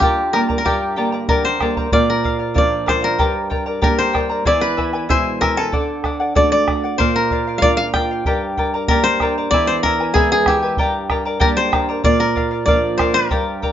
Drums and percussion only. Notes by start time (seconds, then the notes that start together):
0.01 bombo low
0.34 bombo rim
0.49 bombo low
0.66 bombo low
1.29 bombo low
1.61 bombo rim, bombo low
1.77 bombo low
1.92 bombo low
2.25 bombo low
2.56 bombo low
2.88 bombo rim, bombo low
3.19 bombo low
3.51 bombo low
3.82 bombo low
4.15 bombo rim, bombo low
4.46 bombo low
4.78 bombo low
5.10 bombo low
5.42 bombo rim, bombo low
5.73 bombo low
6.04 bombo rim, bombo low
6.36 bombo low
6.68 bombo rim, bombo low
7.00 bombo low
7.31 bombo low
7.62 bombo low
7.94 bombo rim, bombo low
8.25 bombo low
8.57 bombo low
8.88 bombo low
9.20 bombo rim, bombo low
9.52 bombo low
9.84 bombo low
10.15 bombo low
10.46 bombo rim, bombo low
10.77 bombo low
11.10 bombo rim, bombo low
11.41 bombo low
11.73 bombo rim, bombo low
12.04 bombo low
12.36 bombo low
12.67 bombo low
12.99 bombo rim, bombo low
13.31 bombo low
13.63 bombo low